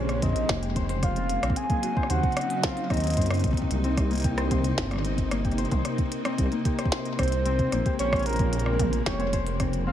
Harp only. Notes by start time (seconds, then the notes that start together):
Already playing: A#3 C4 G4 C5
0.22 C4
0.49 A#3
0.63 G4
0.76 C5
0.89 C5
1.16 C4
1.43 C4
1.70 A#3
1.83 F#4
1.97 C5
2.10 C5
2.37 C4
2.64 C4
2.90 C4
3.04 A#3
3.17 C5
3.31 C5
3.57 C3
3.84 C4
4.11 A#3
4.24 G4
4.38 C5
4.51 C5
4.78 C4
5.05 C4
5.31 A#3
5.45 G4
5.58 C5
5.72 C5
5.99 C4
6.25 C4
6.52 A#3
6.65 G4
6.79 C5
6.92 C5
7.19 C4
7.46 C4
7.72 A#3
7.86 G4
7.99 C5
8.13 C5
8.39 C4
8.66 C4
8.93 A#3
9.06 G4
9.20 C5
9.33 C5
9.60 C4
9.87 C4